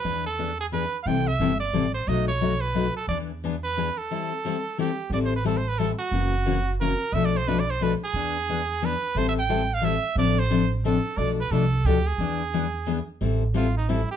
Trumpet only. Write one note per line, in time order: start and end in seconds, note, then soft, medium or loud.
0.00 0.26 B4 medium
0.26 0.57 A4 medium
0.60 0.66 G#4 medium
0.73 0.98 B4 medium
1.03 1.09 F5 medium
1.03 1.29 G5 medium
1.27 1.60 E5 medium
1.60 1.92 D5 medium
1.94 2.10 C5 medium
2.08 2.27 D#5 medium
2.28 2.62 C#5 medium
2.61 2.95 B4 medium
2.97 3.08 A4 medium
3.09 3.18 D5 medium
3.64 4.00 B4 medium
3.98 4.78 A4 medium
4.80 5.11 G4 medium
5.14 5.18 D5 medium
5.25 5.34 C5 medium
5.36 5.46 B4 medium
5.46 5.59 A4 medium
5.57 5.70 C5 medium
5.69 5.80 B4 medium
5.79 5.90 A4 medium
5.99 6.76 F#4 medium
6.81 7.15 A#4 medium
7.14 7.27 E5 medium
7.25 7.38 D5 medium
7.37 7.49 C5 medium
7.48 7.61 B4 medium
7.60 7.72 D5 medium
7.71 7.84 C5 medium
7.83 7.93 B4 medium
8.04 8.87 G#4 medium
8.85 9.19 B4 medium
9.18 9.28 C5 medium
9.29 9.34 E5 medium
9.39 9.75 G5 loud
9.74 9.86 F5 loud
9.85 10.18 E5 medium
10.18 10.41 D5 loud
10.39 10.72 C5 medium
10.86 11.19 A4 medium
11.18 11.29 D5 medium
11.41 11.53 B4 medium
11.51 11.87 A4 medium
11.86 12.09 G4 medium
12.07 13.08 G#4 medium
13.57 13.75 F4 medium
13.77 13.91 D#4 medium
13.90 14.10 E4 medium
14.11 14.16 G4 medium